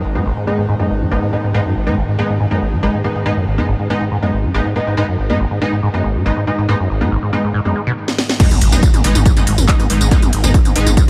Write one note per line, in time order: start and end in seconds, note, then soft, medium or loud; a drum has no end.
0.00 7.97 G#2 medium
0.00 7.97 D#3 medium
0.04 0.17 G#1 medium
0.15 0.24 G#2 loud
0.15 0.24 G#3 medium
0.15 0.24 B3 medium
0.15 0.24 D#4 medium
0.26 0.32 G#1 medium
0.37 0.45 G#2 medium
0.47 0.51 G#2 medium
0.47 0.62 G#3 loud
0.47 0.62 B3 medium
0.47 0.62 D#4 loud
0.58 0.67 G#2 medium
0.69 0.75 G#2 loud
0.79 0.88 F#2 medium
0.79 0.94 G#3 medium
0.79 0.94 B3 medium
0.79 0.94 D#4 medium
0.90 1.03 G#1 medium
1.01 1.10 G#2 loud
1.11 1.18 G#1 loud
1.11 1.26 G#3 medium
1.11 1.26 B3 medium
1.11 1.26 D#4 medium
1.22 1.31 G#2 medium
1.33 1.36 G#2 medium
1.33 1.52 G#3 medium
1.33 1.52 B3 medium
1.33 1.52 D#4 medium
1.44 1.53 G#2 medium
1.54 1.60 G#2 loud
1.54 1.63 G#3 loud
1.54 1.63 B3 medium
1.54 1.63 D#4 loud
1.65 1.74 F#2 medium
1.76 1.88 G#1 medium
1.87 1.95 G#2 loud
1.87 1.95 G#3 medium
1.87 1.95 B3 medium
1.87 1.95 D#4 loud
1.97 2.03 G#1 medium
2.08 2.17 G#2 medium
2.19 2.22 G#2 medium
2.19 2.33 G#3 loud
2.19 2.33 B3 medium
2.19 2.33 D#4 loud
2.29 2.38 G#2 medium
2.40 2.46 G#2 loud
2.51 2.60 F#2 medium
2.51 2.65 G#3 medium
2.51 2.65 B3 medium
2.51 2.65 D#4 medium
2.61 2.74 G#1 medium
2.72 2.81 G#2 loud
2.83 2.89 G#1 loud
2.83 2.97 G#3 medium
2.83 2.97 B3 medium
2.83 2.97 D#4 loud
2.94 3.02 G#2 medium
3.04 3.08 G#2 medium
3.04 3.23 G#3 medium
3.04 3.23 B3 medium
3.04 3.23 D#4 medium
3.15 3.24 G#2 medium
3.26 3.32 G#2 medium
3.26 3.35 G#3 loud
3.26 3.35 B3 medium
3.26 3.35 D#4 loud
3.37 3.45 F#2 medium
3.47 3.60 G#1 medium
3.58 3.67 G#2 loud
3.58 3.67 G#3 medium
3.58 3.67 B3 medium
3.58 3.67 D#4 medium
3.69 3.75 G#1 medium
3.80 3.88 G#2 medium
3.90 3.94 G#2 medium
3.90 4.05 G#3 medium
3.90 4.05 B3 medium
3.90 4.05 D#4 loud
4.01 4.10 G#2 medium
4.12 4.18 G#2 loud
4.22 4.31 F#2 medium
4.22 4.37 G#3 medium
4.22 4.37 B3 medium
4.22 4.37 D#4 medium
4.33 4.45 G#1 medium
4.44 4.52 G#2 loud
4.54 4.60 G#1 loud
4.54 4.69 G#3 medium
4.54 4.69 B3 medium
4.54 4.69 D#4 loud
4.65 4.74 G#2 medium
4.76 4.79 G#2 medium
4.76 4.95 G#3 medium
4.76 4.95 B3 medium
4.76 4.95 D#4 medium
4.87 4.95 G#2 medium
4.97 5.03 G#2 loud
4.97 5.06 G#3 medium
4.97 5.06 B3 medium
4.97 5.06 D#4 loud
5.08 5.17 F#2 medium
5.19 5.31 G#1 medium
5.29 5.38 G#2 loud
5.29 5.38 G#3 medium
5.29 5.38 B3 medium
5.29 5.38 D#4 medium
5.40 5.46 G#1 loud
5.51 5.59 G#2 medium
5.61 5.65 G#2 medium
5.61 5.76 G#3 medium
5.61 5.76 B3 medium
5.61 5.76 D#4 loud
5.72 5.81 G#2 medium
5.83 5.89 G#2 loud
5.94 6.02 F#2 medium
5.94 6.08 G#3 medium
5.94 6.08 B3 medium
5.94 6.08 D#4 medium
6.04 6.17 G#1 medium
6.15 6.24 G#2 loud
6.25 6.32 G#1 loud
6.25 6.40 G#3 medium
6.25 6.40 B3 medium
6.25 6.40 D#4 loud
6.37 6.45 G#2 medium
6.47 6.51 G#2 medium
6.47 6.66 G#3 medium
6.47 6.66 B3 medium
6.47 6.66 D#4 medium
6.58 6.67 G#2 medium
6.69 6.75 G#2 loud
6.69 6.78 G#3 loud
6.69 6.78 B3 medium
6.69 6.78 D#4 loud
6.80 6.88 F#2 medium
6.90 7.03 G#1 medium
7.01 7.10 G#2 loud
7.01 7.10 G#3 medium
7.01 7.10 B3 medium
7.01 7.10 D#4 medium
7.11 7.17 G#1 medium
7.23 7.31 G#2 medium
7.33 7.37 G#2 medium
7.33 7.47 G#3 loud
7.33 7.47 B3 medium
7.33 7.47 D#4 loud
7.44 7.52 G#2 medium
7.54 7.60 G#2 loud
7.65 7.74 F#2 medium
7.65 7.79 G#3 medium
7.65 7.79 B3 medium
7.65 7.79 D#4 medium
7.76 7.82 G#3 medium
7.87 7.92 B2 loud
8.08 snare medium
8.18 snare medium
8.29 snare medium
8.40 11.10 G#2 medium
8.40 8.46 G#2 loud
8.40 11.10 D#3 medium
8.40 8.49 G#3 loud
8.40 8.49 B3 medium
8.40 8.49 D#4 loud
8.40 kick loud
8.40 closed hi-hat loud
8.40 crash loud
8.40 tambourine medium
8.40 impact medium
8.51 8.60 F#2 medium
8.51 closed hi-hat medium
8.51 mid tom medium
8.51 tambourine soft
8.61 8.72 G#1 loud
8.61 8.74 G#1 medium
8.61 open hi-hat loud
8.61 ride medium
8.72 8.83 G#1 medium
8.72 8.81 G#2 loud
8.72 8.81 G#3 medium
8.72 8.81 B3 medium
8.72 8.81 D#4 medium
8.72 closed hi-hat medium
8.72 mid tom medium
8.72 tambourine medium
8.83 8.89 G#1 loud
8.83 kick loud
8.83 closed hi-hat medium
8.83 tambourine soft
8.94 9.02 G#2 medium
8.94 closed hi-hat medium
8.94 mid tom medium
8.94 tambourine soft
9.04 9.14 G#1 loud
9.04 9.08 G#2 medium
9.04 9.19 G#3 loud
9.04 9.19 B3 medium
9.04 9.19 D#4 loud
9.04 open hi-hat loud
9.04 ride medium
9.15 9.25 G#1 medium
9.15 9.24 G#2 medium
9.15 closed hi-hat medium
9.15 mid tom medium
9.15 tambourine medium
9.26 kick loud
9.26 closed hi-hat loud
9.26 tambourine medium
9.36 9.45 F#2 medium
9.36 9.51 G#3 medium
9.36 9.51 B3 medium
9.36 9.51 D#4 medium
9.36 closed hi-hat medium
9.36 mid tom medium
9.36 tambourine soft
9.47 9.57 G#1 loud
9.47 9.60 G#1 medium
9.47 open hi-hat loud
9.47 ride medium
9.58 9.68 G#1 medium
9.58 9.67 G#2 loud
9.58 closed hi-hat medium
9.58 mid tom medium
9.58 tambourine medium
9.68 9.75 G#1 loud
9.68 9.83 G#3 medium
9.68 9.83 B3 medium
9.68 9.83 D#4 loud
9.68 kick loud
9.68 clap loud
9.68 closed hi-hat loud
9.68 tambourine medium
9.79 9.88 G#2 medium
9.79 closed hi-hat medium
9.79 mid tom medium
9.79 tambourine soft
9.90 10.00 G#1 medium
9.90 9.94 G#2 medium
9.90 10.09 G#3 medium
9.90 10.09 B3 medium
9.90 10.09 D#4 medium
9.90 open hi-hat loud
9.90 ride medium
10.01 10.11 G#1 medium
10.01 10.10 G#2 medium
10.01 closed hi-hat medium
10.01 mid tom medium
10.01 tambourine medium
10.11 10.17 G#2 loud
10.11 10.21 G#3 loud
10.11 10.21 B3 medium
10.11 10.21 D#4 loud
10.11 kick loud
10.11 closed hi-hat loud
10.11 tambourine soft
10.22 10.31 F#2 medium
10.22 closed hi-hat medium
10.22 mid tom loud
10.22 tambourine soft
10.33 10.43 G#1 loud
10.33 10.45 G#1 medium
10.33 open hi-hat loud
10.33 ride medium
10.44 10.54 G#1 medium
10.44 10.52 G#2 loud
10.44 10.52 G#3 medium
10.44 10.52 B3 medium
10.44 10.52 D#4 loud
10.44 closed hi-hat medium
10.44 mid tom loud
10.44 tambourine medium
10.54 10.60 G#1 loud
10.54 kick loud
10.54 closed hi-hat loud
10.54 tambourine soft
10.65 10.74 G#2 medium
10.65 closed hi-hat medium
10.65 mid tom medium
10.65 tambourine soft
10.76 10.86 G#1 loud
10.76 10.79 G#2 medium
10.76 10.90 G#3 loud
10.76 10.90 B3 medium
10.76 10.90 D#4 loud
10.76 open hi-hat loud
10.76 ride medium
10.86 10.97 G#1 medium
10.86 10.95 G#2 medium
10.86 closed hi-hat medium
10.86 mid tom medium
10.86 tambourine medium
10.97 11.03 G#2 loud
10.97 kick loud
10.97 closed hi-hat loud
10.97 tambourine medium